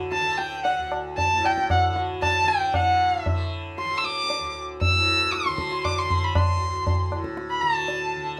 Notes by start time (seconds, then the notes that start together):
Already playing: D2 A2 D3
0.12 A5, tabla te
0.21 D3
0.32 A5
0.38 G5, tabla te
0.64 F#5, tabla tin
0.78 D2
0.92 tabla na
1.17 A5, tabla tin, tabla ge
1.33 A2
1.45 G5, tabla na
1.58 tabla ke
1.70 F#5, tabla na, tabla ge
1.88 D3
1.96 tabla te
2.22 A5, tabla na, tabla ge
2.44 D3
2.48 G5, tabla te
2.74 A2 F#5, tabla na, tabla ge
3.24 E5, tabla tin, tabla ge
3.30 D3
3.78 C6, tabla te
3.85 D3
3.97 E6
4.04 D6, tabla te
4.30 tabla tin
4.39 D2
4.81 E6, tabla tin, tabla ge
4.94 A2
5.33 C6, tabla te
5.46 D3, tabla te
5.58 tabla ke
5.72 tabla te
5.85 D6, tabla na, tabla ge
5.98 C6
6.02 D3
6.10 tabla ge
6.24 B5
6.35 C6, tabla na, tabla ge
6.56 D2
6.87 tabla tin, tabla ge
7.10 A2, tabla na
7.24 tabla ke
7.37 tabla te
7.50 B5
7.61 D3 A5, tabla te
7.88 tabla tin
8.16 D3